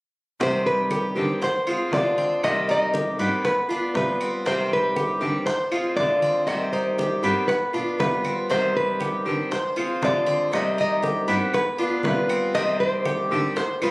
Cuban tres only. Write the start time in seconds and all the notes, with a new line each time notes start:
0.41 C4
0.91 G4
1.42 C5
1.67 F4
2.18 C4
2.69 D#4
2.94 G4
3.19 B3
3.71 D4
4.21 C4
4.46 C4
4.97 G4
5.47 C5
5.72 F4
6.22 C4
6.73 D#4
6.98 G4
7.24 B3
7.74 D4
8.25 C4
8.50 C4
9.00 G4
9.51 C5
9.76 F4
10.26 C4
10.78 D#4
11.03 G4
11.28 B3
11.78 D4
12.29 C4
12.55 C4
13.05 G4
13.56 C5
13.82 F4